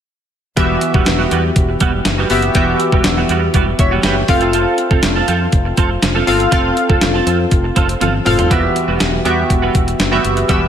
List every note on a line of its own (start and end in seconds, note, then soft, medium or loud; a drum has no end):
0.57 0.75 E1 medium
0.57 1.27 E3 medium
0.57 0.80 G3 medium
0.57 1.21 B3 medium
0.57 0.80 B3 medium
0.57 1.21 F#4 medium
0.57 0.80 F#4 medium
0.57 1.21 G4 medium
0.57 1.21 E5 medium
0.57 kick loud
0.57 closed hi-hat medium
0.81 muted clean electric guitar stroke soft
0.81 closed hi-hat medium
0.94 1.03 E1 medium
0.94 1.06 G3 soft
0.94 1.06 B3 medium
0.94 1.07 F#4 medium
0.94 kick loud
1.06 1.24 E1 medium
1.06 muted clean electric guitar stroke soft
1.06 snare loud
1.06 closed hi-hat medium
1.19 1.30 G3 soft
1.19 1.31 B3 medium
1.19 1.32 F#4 medium
1.31 1.49 E2 medium
1.31 1.48 G3 medium
1.31 1.44 B3 medium
1.31 1.43 F#4 medium
1.31 closed hi-hat medium
1.44 muted clean electric guitar stroke soft
1.56 1.74 E1 loud
1.56 kick medium
1.56 closed hi-hat medium
1.69 muted clean electric guitar stroke soft
1.80 1.99 E1 medium
1.80 1.98 G3 medium
1.80 1.93 B3 loud
1.80 1.92 F#4 loud
1.80 kick medium
1.80 closed hi-hat medium
1.93 muted clean electric guitar stroke medium
2.05 2.23 F#1 medium
2.05 muted clean electric guitar stroke soft
2.05 snare medium
2.05 closed hi-hat medium
2.18 2.29 G3 medium
2.18 2.30 B3 medium
2.18 2.31 F#4 medium
2.30 2.48 F#1 medium
2.30 2.46 B3 medium
2.30 2.47 F#4 medium
2.30 2.47 G4 medium
2.30 2.47 E5 medium
2.30 muted clean electric guitar stroke soft
2.30 open hi-hat medium
2.42 muted clean electric guitar stroke soft
2.42 closed hi-hat soft
2.55 2.73 E1 medium
2.55 3.26 E3 medium
2.55 2.78 G3 medium
2.55 3.19 B3 medium
2.55 2.79 B3 medium
2.55 3.19 F#4 medium
2.55 2.79 F#4 medium
2.55 3.19 G4 medium
2.55 3.20 E5 medium
2.55 kick loud
2.55 closed hi-hat medium
2.80 muted clean electric guitar stroke soft
2.80 closed hi-hat medium
2.92 3.01 E1 medium
2.92 3.04 G3 medium
2.92 3.04 B3 medium
2.92 3.05 F#4 medium
2.92 kick loud
3.04 3.23 E1 loud
3.04 muted clean electric guitar stroke soft
3.04 snare loud
3.04 closed hi-hat medium
3.17 3.28 G3 soft
3.17 3.29 B3 medium
3.17 3.30 F#4 medium
3.29 3.47 E2 loud
3.29 3.47 G3 medium
3.29 3.42 B3 medium
3.29 3.41 F#4 medium
3.29 closed hi-hat medium
3.42 muted clean electric guitar stroke soft
3.54 3.72 E1 medium
3.54 3.71 G3 medium
3.54 3.66 B3 medium
3.54 3.65 F#4 medium
3.54 kick medium
3.54 closed hi-hat medium
3.67 muted clean electric guitar stroke soft
3.79 3.97 E1 medium
3.79 4.03 C#5 soft
3.79 4.03 E5 medium
3.79 muted clean electric guitar stroke soft
3.79 kick medium
3.79 closed hi-hat medium
3.91 4.02 G3 medium
3.91 4.03 B3 medium
3.91 4.04 F#4 medium
4.03 4.22 F#1 loud
4.03 4.21 G3 medium
4.03 4.16 B3 medium
4.03 4.15 F#4 medium
4.03 4.52 E5 medium
4.03 4.51 G5 medium
4.03 snare medium
4.03 closed hi-hat medium
4.16 muted clean electric guitar stroke soft
4.28 4.64 F1 medium
4.28 5.08 C4 medium
4.28 5.08 F4 medium
4.28 5.08 A4 medium
4.28 5.09 F5 medium
4.28 muted clean electric guitar stroke soft
4.28 kick loud
4.28 open hi-hat medium
4.41 4.52 C4 medium
4.41 4.53 F4 medium
4.41 4.54 A4 medium
4.41 closed hi-hat medium
4.53 4.76 C4 medium
4.53 4.77 F4 medium
4.53 4.77 A4 medium
4.53 closed hi-hat medium
4.78 muted clean electric guitar stroke soft
4.78 closed hi-hat medium
4.91 5.00 F1 medium
4.91 5.02 C4 medium
4.91 5.03 F4 medium
4.91 5.03 A4 medium
4.91 kick medium
5.03 5.21 F1 loud
5.03 snare loud
5.03 closed hi-hat medium
5.16 5.27 C4 soft
5.16 5.27 F4 medium
5.16 5.28 A4 medium
5.28 5.46 F2 medium
5.28 5.45 C4 medium
5.28 5.40 F4 medium
5.28 5.39 A4 medium
5.28 closed hi-hat medium
5.40 muted clean electric guitar stroke soft
5.52 5.71 F1 loud
5.52 kick medium
5.52 closed hi-hat medium
5.65 muted clean electric guitar stroke soft
5.77 5.95 F1 medium
5.77 5.94 C4 medium
5.77 5.90 F4 medium
5.77 5.89 A4 medium
5.77 kick medium
5.77 closed hi-hat medium
5.90 muted clean electric guitar stroke soft
6.03 6.21 F1 medium
6.03 muted clean electric guitar stroke soft
6.03 snare medium
6.03 closed hi-hat medium
6.15 6.26 C4 medium
6.15 6.26 F4 medium
6.15 6.27 A4 medium
6.27 6.45 G1 medium
6.27 6.43 C4 medium
6.27 6.43 F4 medium
6.27 6.43 A4 medium
6.27 6.44 F5 medium
6.27 muted clean electric guitar stroke soft
6.27 open hi-hat medium
6.39 muted clean electric guitar stroke soft
6.39 closed hi-hat soft
6.51 6.70 F1 medium
6.51 6.75 C4 medium
6.51 7.16 C4 medium
6.51 6.75 F4 medium
6.51 7.17 F4 medium
6.51 6.75 A4 medium
6.51 7.17 A4 medium
6.51 7.17 F5 medium
6.51 kick loud
6.51 closed hi-hat medium
6.77 muted clean electric guitar stroke soft
6.77 closed hi-hat medium
6.89 6.98 F1 medium
6.89 7.01 C4 soft
6.89 7.01 F4 medium
6.89 7.02 A4 medium
6.89 kick loud
7.01 7.19 F1 loud
7.01 muted clean electric guitar stroke soft
7.01 snare loud
7.01 closed hi-hat medium
7.14 7.25 C4 soft
7.14 7.26 F4 medium
7.14 7.26 A4 medium
7.26 7.44 F2 loud
7.26 7.43 C4 medium
7.26 7.39 F4 medium
7.26 7.38 A4 medium
7.26 closed hi-hat medium
7.39 muted clean electric guitar stroke soft
7.51 7.69 F1 loud
7.51 muted clean electric guitar stroke soft
7.51 kick medium
7.51 closed hi-hat medium
7.64 muted clean electric guitar stroke soft
7.76 7.94 F1 medium
7.76 7.93 C4 medium
7.76 7.88 F4 medium
7.76 7.87 A4 medium
7.76 kick medium
7.76 closed hi-hat medium
7.89 muted clean electric guitar stroke soft
7.89 closed hi-hat medium
8.01 8.19 G1 medium
8.01 8.18 C4 medium
8.01 8.13 F4 medium
8.01 8.12 A4 medium
8.01 closed hi-hat medium
8.01 high tom medium
8.13 muted clean electric guitar stroke soft
8.25 8.44 F1 medium
8.25 8.41 C4 medium
8.25 8.42 F4 medium
8.25 8.42 A4 medium
8.25 8.42 F5 medium
8.25 muted clean electric guitar stroke soft
8.25 mid tom medium
8.25 open hi-hat medium
8.38 8.50 C4 soft
8.38 8.51 F4 soft
8.38 8.51 A4 medium
8.38 closed hi-hat medium
8.38 floor tom medium
8.50 8.69 E1 medium
8.50 9.21 E3 medium
8.50 8.67 G3 medium
8.50 8.98 B3 medium
8.50 8.63 B3 medium
8.50 8.99 F#4 medium
8.50 8.62 F#4 medium
8.50 8.99 G4 medium
8.50 8.99 E5 medium
8.50 kick loud
8.50 closed hi-hat medium
8.63 muted clean electric guitar stroke soft
8.76 muted clean electric guitar stroke soft
8.76 closed hi-hat medium
8.88 8.97 E1 medium
8.88 8.99 G3 soft
8.88 9.00 B3 medium
8.88 9.01 F#4 medium
9.00 9.18 E1 medium
9.00 muted clean electric guitar stroke soft
9.00 snare medium
9.00 closed hi-hat medium
9.13 muted clean electric guitar stroke soft
9.25 9.43 E2 medium
9.25 9.42 G3 medium
9.25 9.81 B3 medium
9.25 9.38 B3 medium
9.25 9.81 F#4 medium
9.25 9.37 F#4 medium
9.25 9.81 G4 medium
9.25 9.81 E5 medium
9.25 closed hi-hat medium
9.38 muted clean electric guitar stroke soft
9.50 9.68 E1 medium
9.50 muted clean electric guitar stroke soft
9.50 kick medium
9.50 closed hi-hat medium
9.62 9.74 G3 medium
9.62 9.74 B3 medium
9.62 9.75 F#4 medium
9.75 9.93 E1 medium
9.75 muted clean electric guitar stroke soft
9.75 kick medium
9.75 closed hi-hat medium
9.87 muted clean electric guitar stroke soft
9.87 closed hi-hat medium
10.00 10.17 F#1 medium
10.00 muted clean electric guitar stroke soft
10.00 snare medium
10.00 closed hi-hat medium
10.11 10.23 G3 medium
10.11 10.35 B3 medium
10.11 10.24 B3 medium
10.11 10.36 F#4 medium
10.11 10.24 F#4 medium
10.11 10.36 G4 medium
10.11 10.36 E5 medium
10.24 10.42 F#1 medium
10.24 muted clean electric guitar stroke soft
10.24 closed hi-hat medium
10.36 muted clean electric guitar stroke soft
10.36 closed hi-hat soft
10.49 10.67 E1 medium
10.49 10.68 E3 medium
10.49 10.66 G3 medium
10.49 10.68 B3 medium
10.49 10.61 B3 medium
10.49 10.68 F#4 medium
10.49 10.60 F#4 medium
10.49 10.68 G4 medium
10.49 10.68 E5 medium
10.49 kick loud
10.49 closed hi-hat medium
10.61 muted clean electric guitar stroke soft